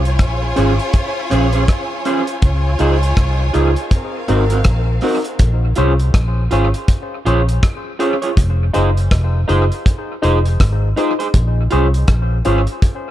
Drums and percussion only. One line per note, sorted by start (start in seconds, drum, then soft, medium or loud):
0.05 closed hi-hat medium
0.19 kick loud
0.19 cross-stick loud
0.19 closed hi-hat medium
0.56 closed hi-hat medium
0.79 closed hi-hat soft
0.93 kick loud
0.93 closed hi-hat loud
1.31 closed hi-hat medium
1.52 closed hi-hat medium
1.68 kick loud
1.68 cross-stick loud
1.68 closed hi-hat loud
2.05 closed hi-hat medium
2.27 closed hi-hat medium
2.42 kick loud
2.42 closed hi-hat loud
2.79 closed hi-hat medium
3.03 closed hi-hat medium
3.17 kick loud
3.17 cross-stick loud
3.17 closed hi-hat medium
3.54 closed hi-hat medium
3.76 closed hi-hat medium
3.91 kick loud
3.91 closed hi-hat loud
4.28 closed hi-hat medium
4.50 closed hi-hat medium
4.64 kick loud
4.64 cross-stick loud
4.64 closed hi-hat loud
5.01 open hi-hat medium
5.24 closed hi-hat medium
5.39 kick loud
5.39 closed hi-hat loud
5.75 closed hi-hat medium
5.99 closed hi-hat medium
6.14 kick loud
6.14 cross-stick loud
6.14 closed hi-hat loud
6.51 closed hi-hat medium
6.74 closed hi-hat medium
6.88 kick loud
6.88 closed hi-hat loud
7.26 closed hi-hat medium
7.49 closed hi-hat medium
7.63 kick loud
7.63 cross-stick loud
7.63 closed hi-hat loud
8.00 closed hi-hat medium
8.22 closed hi-hat medium
8.37 kick loud
8.37 closed hi-hat loud
8.74 closed hi-hat medium
8.97 closed hi-hat medium
9.11 kick loud
9.11 cross-stick loud
9.11 closed hi-hat loud
9.49 closed hi-hat medium
9.72 closed hi-hat medium
9.86 kick loud
9.86 closed hi-hat loud
10.23 closed hi-hat medium
10.45 closed hi-hat medium
10.60 kick loud
10.60 cross-stick loud
10.60 closed hi-hat loud
10.97 closed hi-hat medium
11.20 closed hi-hat medium
11.34 kick loud
11.34 closed hi-hat loud
11.71 closed hi-hat medium
11.94 closed hi-hat medium
12.08 kick loud
12.08 cross-stick loud
12.08 closed hi-hat medium
12.45 closed hi-hat medium
12.67 closed hi-hat medium
12.82 kick loud
12.82 closed hi-hat loud